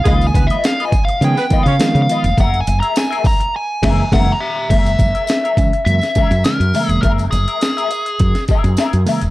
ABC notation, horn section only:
X:1
M:4/4
L:1/16
Q:1/4=103
K:Gb
V:1 name="Horn section"
[A,A] z [Cc] z4 z [A,A] [Cc] z [Dd] z4 | z16 | z16 | z16 |]